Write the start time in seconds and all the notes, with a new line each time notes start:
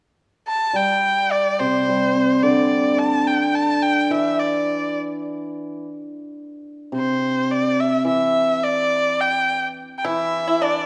0.48 A5
0.73 G3 G5
1.32 D5
1.59 C3 C5
1.88 G3
2.15 C4
2.43 D3 D5
2.98 A5
3.27 G5
3.55 A5
3.82 G5
4.10 E3 E5
4.39 D5
6.92 C3
6.97 C5
7.51 D5
7.80 E5
8.05 E3 E5
8.63 D5
9.21 G5
9.98 G5
10.04 E3 E4 E5
10.48 E4
10.62 D4 D5